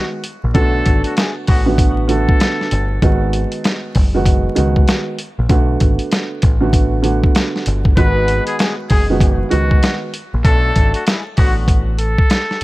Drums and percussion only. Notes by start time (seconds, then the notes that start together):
0.24 closed hi-hat
0.55 kick, closed hi-hat
0.86 kick, closed hi-hat
1.04 closed hi-hat
1.17 snare, closed hi-hat
1.47 kick, open hi-hat
1.78 kick, closed hi-hat
2.09 closed hi-hat
2.29 kick
2.40 snare, closed hi-hat
2.61 snare
2.71 closed hi-hat
3.02 kick, closed hi-hat
3.33 closed hi-hat
3.52 closed hi-hat
3.64 snare, closed hi-hat
3.95 kick, open hi-hat
4.26 kick, closed hi-hat
4.56 closed hi-hat
4.76 kick
4.88 snare, closed hi-hat
5.18 closed hi-hat
5.49 kick, closed hi-hat
5.80 kick, closed hi-hat
5.99 closed hi-hat
6.12 snare, closed hi-hat
6.42 kick, closed hi-hat
6.73 kick, closed hi-hat
7.04 closed hi-hat
7.24 kick
7.35 snare, closed hi-hat
7.56 snare
7.66 closed hi-hat
7.85 kick
7.97 kick, closed hi-hat
8.28 closed hi-hat
8.47 closed hi-hat
8.59 snare, closed hi-hat
8.90 kick, open hi-hat
9.20 kick, closed hi-hat
9.51 closed hi-hat
9.71 kick
9.83 snare, closed hi-hat
10.14 closed hi-hat
10.45 kick, closed hi-hat
10.76 kick, closed hi-hat
10.94 closed hi-hat
11.07 snare, closed hi-hat
11.37 kick, open hi-hat
11.68 kick, closed hi-hat
11.98 closed hi-hat
12.18 kick
12.30 snare, closed hi-hat
12.51 snare